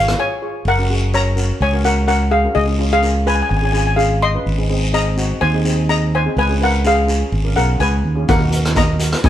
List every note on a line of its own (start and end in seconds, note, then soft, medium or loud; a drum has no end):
0.00 0.14 G#1 loud
0.00 0.16 F5 loud
0.08 cross-stick medium
0.08 closed hi-hat medium
0.18 0.33 F4 medium
0.18 0.33 G#4 medium
0.18 0.33 C#5 medium
0.18 0.63 C#5 medium
0.18 0.68 G#5 loud
0.42 0.63 F4 medium
0.42 0.64 G#4 medium
0.42 0.63 C#5 medium
0.65 1.50 F#1 loud
0.65 1.11 A#4 medium
0.65 1.16 F#5 loud
0.65 long guiro medium
0.78 0.85 C#4 medium
0.78 0.85 F#4 medium
0.78 0.85 A#4 medium
0.90 1.04 C#4 medium
0.90 1.04 F#4 medium
0.90 1.05 G#4 medium
1.14 1.28 C#4 medium
1.14 1.28 F#4 medium
1.14 1.29 A#4 medium
1.14 1.58 C#5 medium
1.14 1.59 A#5 loud
1.14 short guiro medium
1.36 1.58 C#4 medium
1.36 1.58 F#4 medium
1.36 1.58 A#4 medium
1.36 short guiro medium
1.60 2.46 C#2 loud
1.60 1.84 C#5 medium
1.60 1.86 G#5 loud
1.60 long guiro medium
1.73 1.80 C#4 medium
1.73 1.80 F#4 medium
1.73 1.80 A#4 medium
1.84 1.99 C#4 medium
1.84 1.99 F#4 medium
1.84 1.99 A#4 medium
1.84 2.06 A#4 medium
1.84 2.07 F#5 loud
1.84 short guiro medium
2.08 2.30 C#4 medium
2.08 2.30 F#4 medium
2.08 2.30 A#4 medium
2.08 2.30 C#5 medium
2.08 2.33 F#5 loud
2.08 short guiro medium
2.31 2.54 G#4 medium
2.31 2.56 F5 medium
2.44 2.56 C#4 medium
2.44 2.56 F#4 medium
2.44 2.56 A#4 medium
2.55 3.41 C#2 medium
2.55 2.89 G#4 medium
2.55 2.93 D#5 loud
2.55 long guiro medium
2.67 2.75 C#4 medium
2.67 2.74 F4 medium
2.67 2.75 G#4 medium
2.79 2.94 C#4 medium
2.79 2.94 F4 medium
2.79 2.94 G#4 medium
2.93 3.25 G#4 medium
2.93 3.29 F5 loud
3.02 3.18 C#4 medium
3.02 3.18 F4 medium
3.02 3.18 A#4 medium
3.02 short guiro medium
3.26 3.48 C#4 medium
3.26 3.48 F4 medium
3.26 3.48 G#4 medium
3.26 3.35 B4 medium
3.26 3.34 G#5 loud
3.26 short guiro medium
3.35 3.41 G#5 medium
3.42 3.48 G#5 medium
3.49 4.36 G#1 loud
3.49 3.56 G#5 medium
3.49 long guiro medium
3.57 3.64 G#5 medium
3.62 3.70 C#4 medium
3.62 3.70 F4 medium
3.62 3.70 G#4 medium
3.62 3.71 G#5 medium
3.72 3.89 C#4 medium
3.72 3.89 F4 medium
3.72 3.89 G#4 loud
3.72 3.77 G#5 medium
3.72 short guiro medium
3.78 3.86 G#5 medium
3.87 3.94 G#5 medium
3.96 4.20 C#4 medium
3.96 4.20 F4 medium
3.96 4.20 G#4 medium
3.96 4.22 F5 medium
3.96 short guiro medium
4.22 4.90 D#5 loud
4.22 4.96 C6 loud
4.34 4.46 C#4 medium
4.34 4.46 F4 medium
4.34 4.46 B4 medium
4.46 5.32 G#1 medium
4.46 long guiro medium
4.58 4.65 C4 medium
4.58 4.65 D#4 medium
4.58 4.66 G#4 medium
4.69 4.85 C4 medium
4.69 4.85 D#4 medium
4.69 4.85 G#4 loud
4.93 5.09 C4 medium
4.93 5.08 D#4 medium
4.93 5.09 G#4 medium
4.93 5.38 D#5 medium
4.93 5.44 A#5 loud
4.93 short guiro medium
5.17 5.39 C4 medium
5.17 5.39 D#4 medium
5.17 5.39 F#4 medium
5.17 short guiro medium
5.41 6.27 D#2 loud
5.41 5.86 C5 medium
5.41 5.86 G#5 loud
5.41 long guiro medium
5.54 5.61 C4 medium
5.54 5.61 D#4 medium
5.54 5.61 G#4 medium
5.65 5.80 C4 medium
5.65 5.80 D#4 medium
5.65 5.80 G#4 medium
5.65 short guiro medium
5.89 6.11 C4 medium
5.89 6.11 D#4 medium
5.89 6.11 G#4 medium
5.89 6.12 D#5 medium
5.89 6.12 A#5 loud
5.89 short guiro medium
6.15 6.37 C5 medium
6.15 6.38 G#5 loud
6.25 6.37 C4 medium
6.25 6.37 D#4 medium
6.25 6.37 G#4 medium
6.36 7.22 C#2 loud
6.36 6.60 B4 medium
6.36 6.63 G#5 loud
6.36 long guiro medium
6.49 6.56 C#4 medium
6.49 6.56 F4 medium
6.49 6.56 G#4 medium
6.60 6.76 C#4 medium
6.60 6.76 F4 medium
6.60 6.85 A#4 medium
6.60 6.76 B4 medium
6.60 6.87 F#5 loud
6.85 7.00 C#4 medium
6.85 7.00 F4 medium
6.85 7.00 G#4 medium
6.85 7.54 G#4 medium
6.85 7.54 F5 loud
6.85 short guiro medium
7.07 7.30 C#4 medium
7.07 7.30 F4 medium
7.07 7.30 G#4 medium
7.07 short guiro medium
7.32 7.54 G#1 loud
7.32 long guiro medium
7.44 7.51 C#4 medium
7.44 7.52 F4 medium
7.44 7.52 A#4 medium
7.56 7.78 B1 medium
7.56 7.71 C#4 medium
7.56 7.71 F4 medium
7.56 7.71 G#4 medium
7.56 7.79 A#4 medium
7.56 7.81 F#5 medium
7.56 short guiro medium
7.79 8.02 C#2 medium
7.79 8.01 C#4 medium
7.79 8.01 F4 medium
7.79 8.01 G#4 medium
7.79 8.25 B4 medium
7.79 8.25 G#5 loud
7.79 short guiro medium
8.04 8.26 D#2 medium
8.15 8.27 C#4 medium
8.15 8.28 F4 medium
8.15 8.28 G#4 medium
8.28 9.14 D#2 loud
8.28 8.73 A#4 medium
8.28 8.78 F#5 loud
8.28 kick loud
8.28 closed hi-hat medium
8.28 long guiro medium
8.40 8.47 D#4 medium
8.40 8.47 F#4 medium
8.40 8.47 A#4 medium
8.50 8.66 D#4 medium
8.50 8.66 F#4 medium
8.50 8.66 A#4 medium
8.50 closed hi-hat medium
8.65 cross-stick medium
8.65 closed hi-hat medium
8.74 8.90 D#4 medium
8.74 8.90 F#4 medium
8.74 8.90 A#4 loud
8.74 9.21 D#5 medium
8.74 9.26 A#5 loud
8.74 kick medium
8.74 closed hi-hat medium
8.74 short guiro medium
8.99 9.21 D#4 medium
8.99 9.21 F#4 medium
8.99 9.21 A#4 medium
8.99 closed hi-hat medium
8.99 short guiro medium
9.12 cross-stick medium
9.12 closed hi-hat medium
9.23 9.29 A#1 loud
9.23 9.29 D#5 medium
9.23 9.29 G#5 medium
9.23 kick loud
9.23 closed hi-hat medium
9.23 long guiro medium